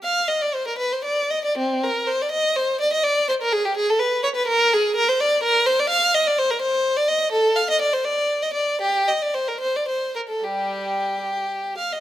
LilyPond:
\new Staff \with { instrumentName = "Violin" } { \time 6/8 \key c \minor \tempo 4. = 81 << { f''8 ees''16 d''16 c''16 bes'16 b'16 c''16 d''8 ees''16 d''16 | c'8 bes'8 c''16 d''16 ees''8 c''8 d''16 ees''16 | d''8 c''16 bes'16 aes'16 g'16 aes'16 a'16 b'8 des''16 b'16 | bes'8 aes'8 bes'16 c''16 d''8 bes'8 c''16 d''16 |
\key g \minor f''8 ees''16 d''16 c''16 bes'16 c''8. d''16 ees''8 | a'8 f''16 ees''16 d''16 c''16 d''8. ees''16 d''8 | g'8 ees''16 d''16 c''16 bes'16 c''16 d''16 c''8 bes'16 a'16 | g'2~ g'8 f''16 ees''16 | } \\ { r2. | r2. | r2. | r2. |
r2. | r2. | r2. | g4. r4. | } >> }